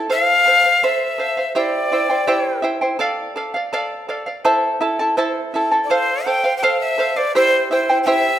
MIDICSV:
0, 0, Header, 1, 3, 480
1, 0, Start_track
1, 0, Tempo, 722892
1, 74, Time_signature, 2, 2, 24, 8
1, 5572, End_track
2, 0, Start_track
2, 0, Title_t, "Quena"
2, 0, Program_c, 0, 77
2, 78, Note_on_c, 0, 77, 92
2, 557, Note_on_c, 0, 76, 80
2, 567, Note_off_c, 0, 77, 0
2, 1036, Note_off_c, 0, 76, 0
2, 1040, Note_on_c, 0, 74, 80
2, 1735, Note_off_c, 0, 74, 0
2, 3879, Note_on_c, 0, 74, 57
2, 3919, Note_on_c, 0, 72, 92
2, 3929, Note_off_c, 0, 74, 0
2, 4156, Note_on_c, 0, 79, 94
2, 4166, Note_off_c, 0, 72, 0
2, 4361, Note_off_c, 0, 79, 0
2, 4365, Note_on_c, 0, 79, 70
2, 4405, Note_on_c, 0, 77, 87
2, 4415, Note_off_c, 0, 79, 0
2, 4515, Note_off_c, 0, 77, 0
2, 4519, Note_on_c, 0, 76, 90
2, 4759, Note_on_c, 0, 74, 89
2, 4769, Note_off_c, 0, 76, 0
2, 4879, Note_off_c, 0, 74, 0
2, 4887, Note_on_c, 0, 72, 93
2, 5106, Note_off_c, 0, 72, 0
2, 5125, Note_on_c, 0, 72, 82
2, 5302, Note_off_c, 0, 72, 0
2, 5333, Note_on_c, 0, 79, 70
2, 5357, Note_on_c, 0, 76, 94
2, 5367, Note_off_c, 0, 79, 0
2, 5572, Note_off_c, 0, 76, 0
2, 5572, End_track
3, 0, Start_track
3, 0, Title_t, "Charango"
3, 0, Program_c, 1, 24
3, 0, Note_on_c, 1, 81, 53
3, 63, Note_on_c, 1, 69, 65
3, 66, Note_on_c, 1, 72, 64
3, 68, Note_off_c, 1, 81, 0
3, 68, Note_on_c, 1, 77, 73
3, 297, Note_off_c, 1, 69, 0
3, 305, Note_on_c, 1, 69, 49
3, 307, Note_off_c, 1, 72, 0
3, 308, Note_off_c, 1, 77, 0
3, 315, Note_on_c, 1, 72, 46
3, 316, Note_on_c, 1, 77, 47
3, 415, Note_off_c, 1, 77, 0
3, 423, Note_on_c, 1, 77, 45
3, 425, Note_off_c, 1, 72, 0
3, 431, Note_off_c, 1, 69, 0
3, 433, Note_on_c, 1, 72, 40
3, 548, Note_off_c, 1, 72, 0
3, 550, Note_off_c, 1, 77, 0
3, 551, Note_on_c, 1, 69, 60
3, 556, Note_on_c, 1, 72, 70
3, 776, Note_off_c, 1, 69, 0
3, 784, Note_off_c, 1, 72, 0
3, 784, Note_on_c, 1, 69, 47
3, 792, Note_on_c, 1, 72, 49
3, 795, Note_on_c, 1, 77, 51
3, 903, Note_off_c, 1, 77, 0
3, 910, Note_off_c, 1, 72, 0
3, 911, Note_off_c, 1, 69, 0
3, 911, Note_on_c, 1, 77, 44
3, 918, Note_on_c, 1, 72, 35
3, 1027, Note_off_c, 1, 72, 0
3, 1030, Note_on_c, 1, 67, 62
3, 1033, Note_on_c, 1, 76, 67
3, 1034, Note_off_c, 1, 77, 0
3, 1035, Note_on_c, 1, 64, 65
3, 1037, Note_on_c, 1, 72, 68
3, 1038, Note_on_c, 1, 79, 70
3, 1266, Note_off_c, 1, 76, 0
3, 1271, Note_off_c, 1, 64, 0
3, 1271, Note_off_c, 1, 72, 0
3, 1273, Note_off_c, 1, 79, 0
3, 1274, Note_on_c, 1, 76, 49
3, 1275, Note_off_c, 1, 67, 0
3, 1279, Note_on_c, 1, 64, 50
3, 1279, Note_on_c, 1, 72, 52
3, 1281, Note_on_c, 1, 79, 53
3, 1384, Note_off_c, 1, 79, 0
3, 1388, Note_off_c, 1, 72, 0
3, 1392, Note_off_c, 1, 64, 0
3, 1392, Note_on_c, 1, 79, 44
3, 1396, Note_on_c, 1, 72, 39
3, 1397, Note_off_c, 1, 76, 0
3, 1400, Note_on_c, 1, 64, 37
3, 1506, Note_off_c, 1, 64, 0
3, 1507, Note_off_c, 1, 72, 0
3, 1507, Note_off_c, 1, 79, 0
3, 1510, Note_on_c, 1, 67, 65
3, 1510, Note_on_c, 1, 76, 74
3, 1514, Note_on_c, 1, 64, 72
3, 1515, Note_on_c, 1, 72, 66
3, 1515, Note_on_c, 1, 79, 75
3, 1734, Note_off_c, 1, 76, 0
3, 1741, Note_off_c, 1, 64, 0
3, 1742, Note_on_c, 1, 76, 50
3, 1743, Note_off_c, 1, 72, 0
3, 1747, Note_off_c, 1, 79, 0
3, 1749, Note_on_c, 1, 64, 53
3, 1751, Note_on_c, 1, 72, 56
3, 1755, Note_on_c, 1, 79, 64
3, 1756, Note_off_c, 1, 67, 0
3, 1860, Note_off_c, 1, 79, 0
3, 1864, Note_off_c, 1, 72, 0
3, 1868, Note_on_c, 1, 79, 47
3, 1870, Note_off_c, 1, 64, 0
3, 1872, Note_off_c, 1, 76, 0
3, 1872, Note_on_c, 1, 72, 42
3, 1878, Note_on_c, 1, 64, 41
3, 1983, Note_off_c, 1, 64, 0
3, 1986, Note_on_c, 1, 69, 78
3, 1988, Note_off_c, 1, 79, 0
3, 1991, Note_on_c, 1, 74, 75
3, 1994, Note_off_c, 1, 72, 0
3, 1997, Note_on_c, 1, 77, 78
3, 2221, Note_off_c, 1, 69, 0
3, 2228, Note_off_c, 1, 74, 0
3, 2229, Note_on_c, 1, 69, 55
3, 2230, Note_off_c, 1, 77, 0
3, 2236, Note_on_c, 1, 74, 53
3, 2238, Note_on_c, 1, 77, 61
3, 2343, Note_off_c, 1, 77, 0
3, 2351, Note_on_c, 1, 77, 52
3, 2356, Note_off_c, 1, 69, 0
3, 2357, Note_off_c, 1, 74, 0
3, 2365, Note_on_c, 1, 74, 47
3, 2471, Note_off_c, 1, 74, 0
3, 2474, Note_off_c, 1, 77, 0
3, 2475, Note_on_c, 1, 69, 69
3, 2479, Note_on_c, 1, 74, 80
3, 2482, Note_on_c, 1, 77, 89
3, 2705, Note_off_c, 1, 69, 0
3, 2708, Note_off_c, 1, 74, 0
3, 2713, Note_off_c, 1, 77, 0
3, 2713, Note_on_c, 1, 69, 47
3, 2716, Note_on_c, 1, 74, 55
3, 2721, Note_on_c, 1, 77, 56
3, 2822, Note_off_c, 1, 77, 0
3, 2830, Note_on_c, 1, 77, 49
3, 2831, Note_off_c, 1, 74, 0
3, 2838, Note_off_c, 1, 69, 0
3, 2839, Note_on_c, 1, 74, 38
3, 2949, Note_off_c, 1, 74, 0
3, 2952, Note_on_c, 1, 72, 73
3, 2953, Note_off_c, 1, 77, 0
3, 2954, Note_on_c, 1, 64, 72
3, 2955, Note_on_c, 1, 69, 71
3, 2956, Note_on_c, 1, 76, 80
3, 2956, Note_on_c, 1, 81, 80
3, 3183, Note_off_c, 1, 64, 0
3, 3183, Note_off_c, 1, 76, 0
3, 3188, Note_off_c, 1, 69, 0
3, 3189, Note_off_c, 1, 81, 0
3, 3191, Note_on_c, 1, 64, 53
3, 3191, Note_on_c, 1, 76, 56
3, 3196, Note_on_c, 1, 69, 50
3, 3197, Note_on_c, 1, 81, 62
3, 3198, Note_off_c, 1, 72, 0
3, 3308, Note_off_c, 1, 81, 0
3, 3313, Note_off_c, 1, 76, 0
3, 3314, Note_off_c, 1, 69, 0
3, 3316, Note_on_c, 1, 81, 54
3, 3318, Note_off_c, 1, 64, 0
3, 3322, Note_on_c, 1, 69, 46
3, 3329, Note_on_c, 1, 64, 45
3, 3431, Note_off_c, 1, 64, 0
3, 3433, Note_off_c, 1, 69, 0
3, 3434, Note_on_c, 1, 72, 70
3, 3435, Note_off_c, 1, 81, 0
3, 3437, Note_on_c, 1, 76, 70
3, 3439, Note_on_c, 1, 64, 68
3, 3441, Note_on_c, 1, 69, 73
3, 3443, Note_on_c, 1, 81, 76
3, 3670, Note_off_c, 1, 76, 0
3, 3678, Note_off_c, 1, 64, 0
3, 3678, Note_on_c, 1, 76, 52
3, 3679, Note_off_c, 1, 72, 0
3, 3682, Note_off_c, 1, 69, 0
3, 3684, Note_off_c, 1, 81, 0
3, 3686, Note_on_c, 1, 64, 56
3, 3690, Note_on_c, 1, 69, 52
3, 3691, Note_on_c, 1, 81, 56
3, 3787, Note_off_c, 1, 81, 0
3, 3792, Note_off_c, 1, 69, 0
3, 3792, Note_off_c, 1, 76, 0
3, 3795, Note_on_c, 1, 81, 44
3, 3799, Note_off_c, 1, 64, 0
3, 3800, Note_on_c, 1, 69, 43
3, 3807, Note_on_c, 1, 64, 37
3, 3910, Note_off_c, 1, 69, 0
3, 3915, Note_off_c, 1, 64, 0
3, 3918, Note_on_c, 1, 69, 70
3, 3919, Note_off_c, 1, 81, 0
3, 3921, Note_on_c, 1, 72, 73
3, 3923, Note_on_c, 1, 77, 77
3, 4150, Note_off_c, 1, 69, 0
3, 4155, Note_off_c, 1, 72, 0
3, 4158, Note_off_c, 1, 77, 0
3, 4158, Note_on_c, 1, 69, 52
3, 4163, Note_on_c, 1, 72, 54
3, 4166, Note_on_c, 1, 77, 56
3, 4268, Note_off_c, 1, 77, 0
3, 4275, Note_off_c, 1, 72, 0
3, 4276, Note_on_c, 1, 77, 50
3, 4280, Note_off_c, 1, 69, 0
3, 4283, Note_on_c, 1, 72, 45
3, 4398, Note_off_c, 1, 72, 0
3, 4399, Note_off_c, 1, 77, 0
3, 4400, Note_on_c, 1, 69, 67
3, 4406, Note_on_c, 1, 72, 76
3, 4406, Note_on_c, 1, 77, 82
3, 4626, Note_off_c, 1, 69, 0
3, 4632, Note_off_c, 1, 72, 0
3, 4634, Note_on_c, 1, 69, 53
3, 4639, Note_off_c, 1, 77, 0
3, 4640, Note_on_c, 1, 72, 54
3, 4646, Note_on_c, 1, 77, 60
3, 4749, Note_off_c, 1, 77, 0
3, 4757, Note_off_c, 1, 69, 0
3, 4757, Note_on_c, 1, 77, 48
3, 4760, Note_off_c, 1, 72, 0
3, 4769, Note_on_c, 1, 72, 40
3, 4878, Note_off_c, 1, 77, 0
3, 4879, Note_off_c, 1, 72, 0
3, 4881, Note_on_c, 1, 67, 72
3, 4885, Note_on_c, 1, 76, 71
3, 4888, Note_on_c, 1, 64, 78
3, 4888, Note_on_c, 1, 72, 77
3, 4891, Note_on_c, 1, 79, 74
3, 5110, Note_off_c, 1, 76, 0
3, 5113, Note_off_c, 1, 64, 0
3, 5118, Note_on_c, 1, 76, 55
3, 5120, Note_off_c, 1, 67, 0
3, 5120, Note_off_c, 1, 72, 0
3, 5121, Note_off_c, 1, 79, 0
3, 5121, Note_on_c, 1, 64, 54
3, 5128, Note_on_c, 1, 72, 59
3, 5129, Note_on_c, 1, 79, 62
3, 5234, Note_off_c, 1, 79, 0
3, 5238, Note_off_c, 1, 76, 0
3, 5239, Note_off_c, 1, 64, 0
3, 5239, Note_off_c, 1, 72, 0
3, 5242, Note_on_c, 1, 79, 54
3, 5247, Note_on_c, 1, 72, 50
3, 5252, Note_on_c, 1, 64, 46
3, 5351, Note_off_c, 1, 64, 0
3, 5354, Note_off_c, 1, 79, 0
3, 5355, Note_off_c, 1, 72, 0
3, 5356, Note_on_c, 1, 67, 74
3, 5357, Note_on_c, 1, 76, 73
3, 5359, Note_on_c, 1, 64, 77
3, 5362, Note_on_c, 1, 79, 74
3, 5363, Note_on_c, 1, 72, 70
3, 5572, Note_off_c, 1, 64, 0
3, 5572, Note_off_c, 1, 67, 0
3, 5572, Note_off_c, 1, 72, 0
3, 5572, Note_off_c, 1, 76, 0
3, 5572, Note_off_c, 1, 79, 0
3, 5572, End_track
0, 0, End_of_file